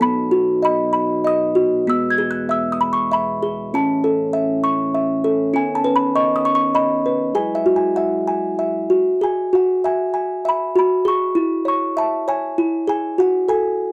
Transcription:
Already playing: F#3
0.01 B2 B3 D#4 B5
0.31 F#4
0.63 D#5 B5
0.93 B5
1.24 D#5 D#6
1.55 F#4
1.87 E2 G#3 B3 E6
2.10 G#6
2.18 G#4
2.31 F#6
2.49 E5 E6
2.72 D#6
2.81 B5
2.93 C#6
3.11 E5 B5
3.43 G#4
3.73 A2 E3 C#4 A5
4.04 A4
4.33 E5
4.64 C#6
4.95 E5
5.24 A4
5.54 D#3 B3 C#4 G#5
5.75 A5
5.84 B4
5.96 B5
6.15 D#5 C#6
6.36 D#6
6.45 C#6
6.55 C#6
6.75 D#5 B5
7.06 B4
7.34 F#3 G#3 E4 G#4 G#5
7.55 E5
7.66 F#4
7.76 G#5
7.96 E5 F#5
8.27 G#5
8.59 E5
8.90 F#4
9.21 G#4 G#5
9.53 F#4 F#5
9.84 E5 G#5
10.14 G#5
10.45 E5 B5
10.76 F#4 B5
11.05 G#4 C#6
11.35 E4
11.65 C#5 C#6
11.97 E5 A5
12.28 C#5 G#5
12.58 E4
12.87 G#4 G#5
13.18 F#4 F#5
13.48 A4 G#5

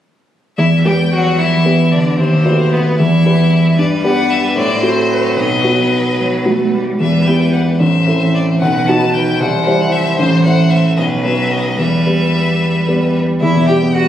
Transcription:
0.58 E2 E3 E4 E5
0.85 G3 B3 G4 B4 G5
1.12 F#3 F#4 F#5
1.38 E3 E4 E5
1.64 B3 G4 B4
1.91 D3 D4 D5
2.17 D#2 C3 C4 C5
2.45 A3 F#4 B4
2.71 B2 B3 B4
2.99 E2 E3 E4 E5
3.26 B3 G4 B4
3.77 G2 G3 B4 D5
4.04 B3 G4 B4 F#5
4.30 E5
4.56 A2 F#3 C5 D5
4.82 C4 F#4 A4 C5
5.11 B4
5.36 B1 B4 D#5
5.64 B3 F#4
6.18 F#3
6.45 A3 B3 F#4
6.73 G3
7.00 E2 G3 B4 E5
7.27 B3 E4 G4 G5
7.53 F#5
7.80 A1 E3 C5 E5
8.07 C4 E4 A4
8.34 D5
8.60 B1 D#3 B4 F#5
8.88 B3 D#4 F#4 A5
9.14 G5
9.40 C2 E3 C5 F#5
9.67 G3 E4 C5
9.92 E5
10.18 A1 E3 C5
10.44 A3 E4 C5 F#5
10.70 E5
10.97 B1 F#3 B4 D#5
11.24 F#3 B3 B4 E5
11.51 D#5
11.78 E2 G3 B4 E5
12.06 G3 B3 B4
12.88 G3 B3 B4
13.41 E2 E4 E5
13.56 B2
13.67 G3 G4 G5
13.82 B3
13.94 G3 F#4 F#5

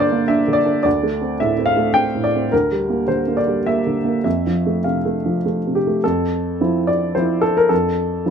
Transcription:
Already playing: G2 D3 A#3 D4 A#4 C5
0.00 D5
0.12 A#3
0.28 D4 E5
0.48 D3
0.53 D5
0.65 D4
0.83 D2 D5
1.03 A3
1.21 C4
1.40 A2 E5
1.58 C4
1.66 F5
1.76 A3
1.94 C4 G5
2.15 A2
2.24 D5
2.36 C4
2.52 D2 A#4
2.72 G3
2.90 A#3
3.08 D3 C5
3.28 A#3
3.37 D5
3.47 G3
3.66 A#3 E5
3.87 D3
4.04 A#3
4.24 F2 E5
4.47 F3
4.66 A3
4.84 C3 F5
5.05 A3
5.26 F3
5.46 A3
5.67 C3
5.75 G4
5.87 A3
6.04 F2 A4
6.61 F3 C4 E4
6.87 D5
7.15 F3 C4 E4 C5
7.41 A4
7.57 A#4
7.69 F2 A4
8.26 F3

